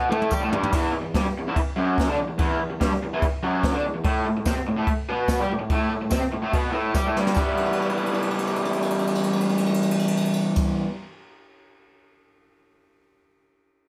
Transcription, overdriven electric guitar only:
Already playing: B3
0.10 A2 A3
0.31 G3 G4
0.40 A2 A3
0.50 G2 G3
0.71 E2 E3
0.93 E2
1.02 E2
1.14 G2 G3
1.27 muted overdriven electric guitar stroke
1.39 E2
1.47 E2 E3
1.58 muted overdriven electric guitar stroke
1.76 F#2 F#3
2.07 D3 D4
2.16 E2
2.29 E2
2.39 E2 E3
2.59 E2
2.71 E2
2.80 G2 G3
2.94 muted overdriven electric guitar stroke
3.04 E2
3.13 E2 E3
3.25 muted overdriven electric guitar stroke
3.43 F#2 F#3
3.72 D3 D4
3.84 E2
3.95 E2
4.05 A2 A3
4.27 A2
4.37 A2
4.46 C3 C4
4.57 muted overdriven electric guitar stroke
4.68 A2
4.77 A2 A3
4.88 muted overdriven electric guitar stroke
5.09 B2 B3
5.40 G3 G4
5.50 A2
5.59 A2
5.71 A2 A3
5.90 A2
6.02 A2
6.11 C3 C4
6.22 muted overdriven electric guitar stroke
6.33 A2
6.43 A2 A3
6.52 B2 B3
6.71 A2 A3
6.94 G3 G4
7.05 A2 A3
7.17 G2 G3
7.35 E3 G3 B3 E4

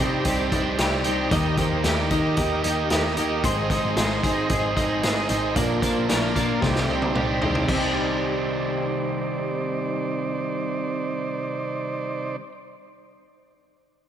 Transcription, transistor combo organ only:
0.00 D#4 G4 C5 D5
0.25 D#4 G4 C5 D5
0.52 D#4 G4 C5 D5
0.78 D#4 G4 C5 D5
1.05 D#4 G4 C5 D5
1.31 D#4 G4 A#4 D#5
1.58 D#4 G4 A#4 C5
1.84 D#4 G4 A#4 D5
2.11 D#4 G4 A#4 D#5
2.37 D#4 G4 A#4 D#5
2.63 D#4 G4 A#4 D#5
2.90 D#4 G4 A#4 D#5
3.17 D#4 G4 A#4 D#5
3.43 D#4 G#4 C5 D#5
3.70 D#4 G#4 C5 D#5
3.96 D#4 G#4 C5 D#5
4.22 D#4 G#4 C5 D#5
4.49 D#4 G#4 C5 D#5
4.76 D#4 G#4 C5 D#5
5.02 D#4 G#4 C5 D#5
5.29 D#4 G#4 C5 D#5
5.55 D4 F4 A#4 D5
5.81 D4 F4 A#4 C5
6.08 D4 F4 A#4 D5
6.35 D4 F4 A#4 D5
6.61 D#4 G4 C5 D5
6.87 D#4 G4 C5 D5
7.14 D#4 G4 C5 D5
7.41 D#4 G4 C5 D5
7.67 D#4 C5 D5

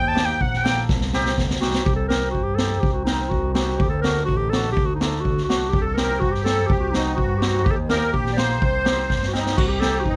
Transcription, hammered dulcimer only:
0.15 A#3 D#4 G4
0.64 A#3 D#4 A4
1.14 C4 D#4 G4
1.61 C4 D#4 G4
2.10 C4 D#4 G4
2.59 C4 D#4 G4
3.06 C4 D#4 A#4
3.55 C4 D#4 G4
4.03 A3 D4 F#4
4.52 A3 D4 F#4
5.01 A3 D4 A4
5.49 A3 D4 F#4
5.98 C4 D#4 G4
6.46 C4 D#4 G4
6.94 C4 D#4 F#4
7.42 C4 D#4 G4
7.90 A#3 D#4 G4
8.36 A#3 D#4 G4
8.85 C4 D#4 G4
9.33 C4 D#4 A#4
9.81 C4 D#4 G4

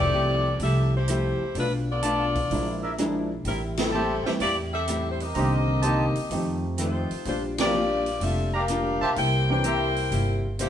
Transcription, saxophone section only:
0.00 C4 G4 A4 D5
0.63 C4 G4 A4 E5
0.97 A3 E4 G4 C5
1.59 A3 D4 F4 B4
1.91 B3 F4 A4 D5
3.47 G3 C4 E4 A#4
3.79 G3 C4 E4 A4
4.26 A3 E4 G4 C5
4.42 A#3 E4 G4 D5
4.73 C4 G4 A4 E5
5.12 C5
5.22 C4 G4 A#4 D#5
6.80 A3 D#4 F4 C5
7.28 A3 D4 F4 C5
7.61 A#3 F4 G4 D5
8.22 C4 F4 A4 E5
8.57 D4 G4 A#4 F5
9.19 E4 A#4 C5 G5
9.52 E4 A#4 C5 G5
10.60 A#3 E4 G4 C5

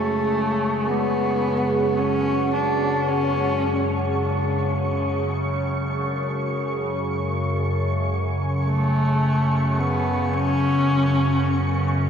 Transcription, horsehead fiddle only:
Already playing: A3
0.88 B3
1.99 C#4
2.54 D4
3.09 C#4
8.66 A3
9.78 B3
10.34 C#4

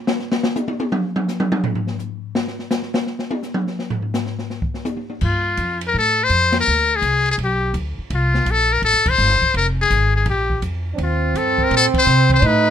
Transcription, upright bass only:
5.22 G2
5.58 F2
5.94 A2
6.29 F2
6.68 D2
7.02 C2
7.38 B1
7.74 D2
7.98 muted upright bass stroke
8.10 C2
8.46 A#1
8.82 A1
8.93 G1
9.06 D#1
9.18 G1
9.42 muted upright bass stroke
9.54 F1
9.90 G#1
10.26 A#1
10.62 F2
10.98 D#2
11.34 G2
11.71 A#2
11.94 muted upright bass stroke
12.06 C3
12.42 A2

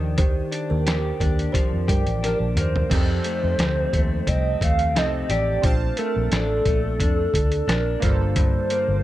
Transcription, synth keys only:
2.90 C4 D#4 G4
2.95 A4
4.95 C4 D#4 G4 A4
5.62 C4 D4 F4
5.67 A5
8.00 D3 A#3 F4
8.05 A4

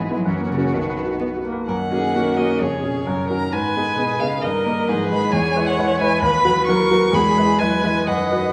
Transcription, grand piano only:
Already playing: G#2 G#3
0.11 B3 E4
0.26 F#2
0.41 A#3
0.57 C#4 F#4
0.74 B1
0.90 B4
1.06 F#4
1.21 B3
1.37 F#4
1.52 B4
1.68 F#2
1.91 A#3 C#4 F#4
2.16 A#3 C#4 F#4
2.38 A#3 C#4 F#4
2.61 F2
2.83 C#4 G#4
3.07 F#2
3.30 C#4 F#4 A#4
3.53 G#2
3.76 B3 D#4 G#4
3.99 B3 D#4 G#4
4.21 B3 D#4 G#4
4.43 G2
4.66 A#3 D#4 A#4
4.89 G#2
5.11 G#3 D#4 B4
5.33 E2
5.56 G#3 E4 B4
5.78 G#3 E4 B4
6.01 G#3 E4 B4
6.22 D#2
6.45 F#3 F#4 B4
6.68 F#3 F#4 B4
6.91 F#3 F#4 B4
7.13 E2
7.37 G#3 E4 B4
7.60 G#3 E4 B4
7.84 G#3 E4 B4
8.07 F#2
8.31 F#3 D#4 B4

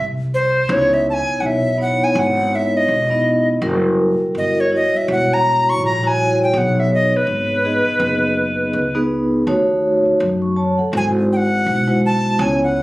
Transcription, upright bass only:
Already playing: C2
0.69 C#2
1.27 muted upright bass stroke
1.42 B1
2.01 muted upright bass stroke
2.15 G#1
2.88 E1
3.62 F#1
4.20 muted upright bass stroke
4.35 G1
4.93 muted upright bass stroke
5.08 E1
5.81 A#1
6.53 B1
7.12 muted upright bass stroke
7.27 G#1
7.85 muted upright bass stroke
8.00 F#1
8.73 C#2
9.47 D#2
10.05 muted upright bass stroke
10.20 F#2
10.79 muted upright bass stroke
10.93 G#1
11.66 B1
12.39 C#2

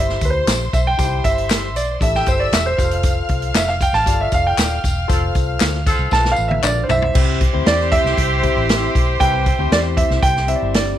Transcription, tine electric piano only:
Already playing: E4 G4 C5
0.98 D#4 G4 C5
1.04 E4
2.01 D4 G4 A4
2.07 E4
2.78 F4 G4 C5
2.85 A4
4.06 F4 G4 D5
4.14 A4
5.08 F4 A4 C5
6.11 F4 A4 A#4
6.19 B4
7.14 C4 E4 G4 C5
7.53 C4 E4 G4 C5
8.43 C4 E4 G4 C5
9.20 C4 E4 G4 B4
9.58 C4 E4 G4 C5
10.47 C4 E4 G4 C5
10.56 D5

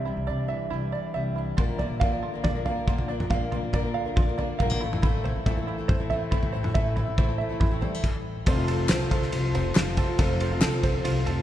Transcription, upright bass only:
Already playing: C2
0.17 C2
0.29 C3
0.71 C2
1.15 C2
1.58 A#1
1.90 A#1
2.01 A#2
2.44 A#1
2.88 A#1
3.31 A#1
3.63 A#1
3.74 A#2
4.17 A#1
4.60 A#1
4.82 A1
5.36 A1
5.47 A2
5.90 A1
6.33 A1
6.75 A1
7.08 A1
7.18 A2
7.61 A1
8.47 F1
8.90 C2
9.33 C2
9.55 F1
9.77 F1
10.19 F1
10.62 C2
11.05 C2
11.26 F1

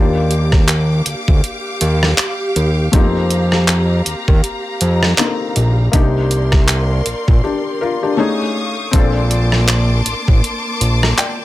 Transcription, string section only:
Already playing: G4 F5 D6
2.93 A#5
5.94 A#4 D5 C6
8.18 A3 F5 C#6 D#6
8.94 A#3 A5 C6 D6

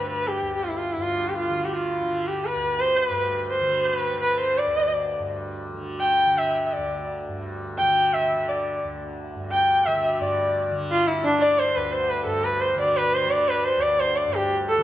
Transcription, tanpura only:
Already playing: D2 G2 D3
0.42 D2
0.97 G2
1.50 D3
2.02 D3
2.56 D2
3.09 G2
3.61 D3
4.14 D3
4.66 D2
5.19 G2
5.73 D3
6.26 D3
6.77 D2
7.28 G2
7.81 D3
8.34 D3
8.84 D2
9.35 G2
9.87 D3
10.20 G2
10.71 D3
11.24 D3
11.76 D2
12.25 G2
12.75 D3
13.26 D3
13.77 D2
14.27 G2
14.78 D3

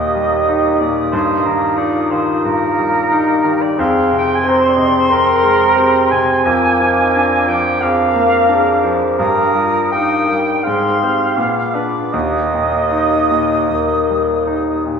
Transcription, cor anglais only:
Already playing: D#5
0.80 D5
1.12 C5
1.46 A#4
1.77 D5
2.11 C5
2.45 A#4
3.61 D5
3.80 F5
4.18 G5
4.35 G#5
4.49 A#4
4.60 C5
4.68 D5
4.77 D#5
4.86 D5
4.99 C5
5.11 A#4
6.11 G#5
7.48 G5
7.81 F5
9.18 A#4
9.92 G5
10.63 F5
11.74 D5
12.12 D#5

